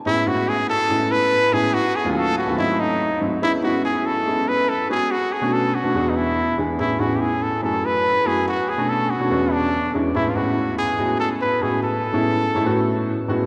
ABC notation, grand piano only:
X:1
M:4/4
L:1/16
Q:1/4=143
K:A
V:1 name="Grand piano"
[A,,G,B,CE] z [A,,G,B,CF]4 z2 [A,,G,B,CE]4 z2 [A,,G,B,CE]2 | z3 [^D,,F,A,C=F]3 z [D,,^F,A,C=F] [G,,^F,A,^B,^D]4 z2 [G,,F,A,B,D] z | [G,B,CE] z [G,B,CE]4 z2 [G,B,CE]4 z2 [G,B,CF]2 | z3 [B,,A,CDF]3 z [B,,A,CDF] [E,,G,B,DF]4 z2 [E,,G,B,DG] z |
[A,,B,CEG] z [A,,B,CEG]4 z2 [F,,A,CEG]4 z2 [F,,A,CEF]2 | z3 [B,,A,CDF]3 z [B,,A,CDF] [E,,G,B,CDF]4 z2 [E,,G,B,CDE] z | [A,,G,B,CE] z [A,,G,B,CF]4 z2 [A,,G,B,CF]4 z2 [A,,G,B,CF]2- | [A,,G,B,CF]2 z [A,,G,B,CE]3 z [A,,G,B,CE] [A,,A,B,CF]4 z2 [A,,G,B,CF] z |]